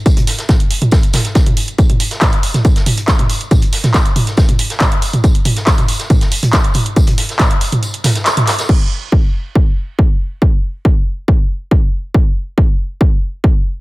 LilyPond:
\new DrumStaff \with { instrumentName = "Drums" } \drummode { \time 4/4 \tempo 4 = 139 <hh bd tamb>16 <hh toml>16 <hho sn tamb>16 <hh sn>16 <hh bd sn tamb toml>16 hh16 <hho tamb>16 <hh toml>16 <hh bd sn tamb>16 hh16 <hho sn tamb toml>16 <hh sn>16 <hh bd sn tamb>16 <hh toml>16 <hho tamb>16 hh16 | <hh bd tamb>16 <hh toml>16 <hho tamb>16 <hh sn>16 <hc hh bd sn tamb toml>16 hh16 <hho tamb>16 <hh sn toml>16 <hh bd tamb>16 <hh sn>16 <hho tamb toml>16 hh16 <hc hh bd sn tamb>16 <hh toml>16 <hho tamb>16 hh16 | <hh bd tamb toml>16 hh16 <hho sn tamb>16 <hh sn toml>16 <hc hh bd sn tamb>16 hh16 <hho tamb toml>16 <hh sn>16 <hh bd sn tamb>16 <hh toml>16 <hho tamb>16 <hh sn>16 <hc hh bd sn tamb toml>16 hh16 <hho tamb>16 <hh toml>16 | <hh bd tamb>16 hh16 <hho tamb toml>16 <hh sn>16 <hc hh bd sn tamb>16 <hh toml>16 <hho tamb>16 <hh sn>16 <hh bd tamb toml>16 <hh sn>16 <hho tamb>16 <hh toml>16 <hc hh bd sn tamb>16 hh16 <hho tamb toml>16 hh16 |
<hh bd tamb>16 <hh toml>16 <hho sn tamb>16 <hh sn>16 <hc hh bd sn tamb toml>16 hh16 <hho tamb>16 <hh toml>16 <hh tamb>16 hh16 <hho sn tamb toml>16 <hh sn>16 <hc hh sn tamb>16 <hh toml>16 <hc hho sn tamb>16 <hh sn tamb>16 | <cymc bd>4 bd4 bd4 bd4 | bd4 bd4 bd4 bd4 | bd4 bd4 bd4 bd4 | }